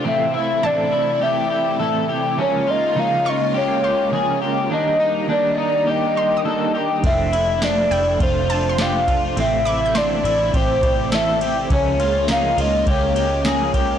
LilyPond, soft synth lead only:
\new Staff \with { instrumentName = "Soft synth lead" } { \time 4/4 \key a \minor \tempo 4 = 103 e''8 e''8 d''4 e''4. r8 | des''8 ees''8 f''8 ees''8 des''4. r8 | ees''4 d''4 ees''4. r8 | e''4 d''4 c''4 f''8. r16 |
e''4 d''4 c''4 e''8. r16 | des''4 f''8 ees''8 des''4. r8 | }